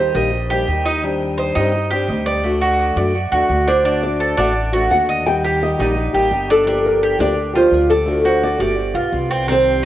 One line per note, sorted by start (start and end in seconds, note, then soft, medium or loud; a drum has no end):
0.00 0.33 D#3 medium
0.00 0.16 G3 medium
0.00 0.15 A#3 medium
0.00 0.15 D#4 medium
0.00 0.14 G4 medium
0.00 0.16 C5 medium
0.15 0.64 A#1 medium
0.15 0.32 G3 medium
0.15 0.32 A#3 medium
0.15 0.32 D#4 medium
0.15 0.32 G4 medium
0.15 0.51 A#4 medium
0.15 0.49 D#5 medium
0.33 muted steel-string acoustic guitar stroke medium
0.50 0.67 G3 medium
0.50 0.68 A#3 medium
0.50 0.68 D#4 medium
0.50 0.85 G4 medium
0.50 0.68 G4 medium
0.68 1.50 D#2 medium
0.68 1.02 G3 soft
0.68 1.03 A#3 soft
0.68 1.04 D#4 medium
0.68 1.03 G4 medium
0.86 1.03 D#4 medium
1.02 1.55 D#3 medium
1.02 1.56 G3 medium
1.02 1.56 C4 medium
1.02 1.57 D4 medium
1.02 1.55 G4 medium
1.38 1.55 C5 medium
1.55 2.05 G2 medium
1.55 1.73 G3 soft
1.55 1.74 C4 medium
1.55 1.74 D4 medium
1.55 1.90 D#4 medium
1.55 1.73 G4 medium
1.74 muted steel-string acoustic guitar stroke medium
1.91 2.08 G3 soft
1.91 2.09 C4 medium
1.91 2.09 D4 medium
1.91 2.25 G4 medium
1.91 2.09 G4 medium
2.08 2.91 D2 medium
2.08 2.43 G3 soft
2.08 2.44 C4 soft
2.08 2.43 D4 medium
2.08 2.45 G4 medium
2.26 2.61 D5 medium
2.43 3.15 D3 medium
2.43 2.99 A3 medium
2.43 2.97 D4 medium
2.43 2.97 F#4 medium
2.61 2.96 F#4 medium
2.96 3.29 F#2 medium
2.96 3.14 A3 medium
2.96 3.14 D4 medium
2.96 3.14 F#4 medium
2.96 3.31 D5 medium
3.15 muted steel-string acoustic guitar stroke medium
3.32 3.48 D#2 medium
3.32 3.50 A3 medium
3.32 3.50 D4 medium
3.32 3.66 F#4 medium
3.32 3.49 F#4 medium
3.49 4.32 D2 medium
3.49 3.82 D3 soft
3.49 3.84 A3 soft
3.49 3.84 D4 soft
3.49 3.85 F#4 medium
3.68 3.84 D4 medium
3.68 4.04 C5 medium
3.84 4.37 D3 medium
3.84 4.37 A3 medium
3.84 4.19 D4 medium
3.84 4.37 D4 medium
3.84 4.36 F#4 medium
4.03 4.36 D5 medium
4.20 4.37 A4 medium
4.37 4.87 A1 medium
4.37 4.54 A3 medium
4.37 4.72 D4 medium
4.37 4.54 D4 medium
4.37 4.54 F#4 medium
4.37 4.72 F#5 medium
4.55 muted steel-string acoustic guitar stroke medium
4.72 4.90 A3 medium
4.72 4.90 D4 medium
4.72 4.90 F#4 medium
4.72 5.07 F#4 medium
4.91 5.73 D#2 medium
4.91 5.25 D3 soft
4.91 5.25 A3 soft
4.91 5.26 D4 soft
4.91 5.26 F#4 medium
4.91 5.26 F#5 medium
5.09 5.43 D#5 medium
5.25 5.78 D#3 medium
5.25 5.81 G3 medium
5.25 5.80 A#3 medium
5.25 5.79 D#4 medium
5.25 5.78 G4 medium
5.25 5.62 G5 loud
5.44 5.78 G4 medium
5.63 5.80 D#5 medium
5.79 6.12 A#1 medium
5.79 5.95 G3 medium
5.79 5.96 A#3 medium
5.79 6.13 D#4 medium
5.79 5.96 D#4 medium
5.79 5.96 G4 medium
5.79 6.15 D5 medium
5.96 muted steel-string acoustic guitar stroke medium
6.13 6.30 A1 medium
6.13 6.30 G3 medium
6.13 6.30 A#3 medium
6.13 6.31 D#4 medium
6.13 6.30 G4 medium
6.13 6.48 G4 medium
6.31 7.14 G1 medium
6.31 6.65 G3 soft
6.31 6.66 A#3 soft
6.31 6.67 D#4 soft
6.31 6.67 G4 soft
6.50 6.66 D4 medium
6.50 6.83 A4 medium
6.65 7.18 D3 medium
6.65 7.18 F3 medium
6.65 7.19 A#3 medium
6.65 7.01 D4 medium
6.65 7.19 D4 medium
6.65 7.18 G4 medium
6.86 7.18 A#4 medium
7.03 7.20 G4 medium
7.19 7.68 D2 medium
7.19 7.35 F3 medium
7.19 7.35 A#3 medium
7.19 7.35 D4 medium
7.19 7.54 D4 medium
7.19 7.36 G4 medium
7.19 7.56 D5 medium
7.36 muted steel-string acoustic guitar stroke medium
7.54 7.69 F3 medium
7.54 7.70 A#3 medium
7.54 7.72 D4 medium
7.54 7.89 F4 medium
7.54 7.71 G4 medium
7.54 7.74 C5 medium
7.71 8.54 D2 medium
7.71 8.05 F3 soft
7.71 8.06 A#3 soft
7.71 8.06 D4 soft
7.71 8.07 G4 medium
7.71 7.89 A#4 medium
7.90 8.22 A4 medium
7.90 8.24 D5 medium
8.05 8.59 D3 medium
8.05 8.59 A3 medium
8.05 8.59 D4 medium
8.05 8.57 F#4 medium
8.25 8.59 F#4 medium
8.25 8.43 C5 medium
8.43 8.59 D5 medium
8.58 8.93 G1 medium
8.58 8.76 A3 medium
8.58 8.77 D4 medium
8.58 8.76 F#4 medium
8.58 9.27 G4 medium
8.58 8.94 D5 medium
8.77 muted steel-string acoustic guitar stroke medium
8.94 9.11 B1 medium
8.94 9.12 B3 medium
8.94 9.12 F4 medium
8.94 9.29 F4 medium
9.13 9.85 C2 medium
9.13 9.47 G3 soft
9.13 9.48 B3 soft
9.13 9.48 F4 medium
9.31 9.47 C4 medium
9.47 9.85 C3 medium
9.47 9.85 D#3 medium
9.47 9.85 G3 medium
9.47 9.82 C4 medium
9.47 9.85 C4 medium
9.47 9.85 G4 medium
9.52 9.85 C5 medium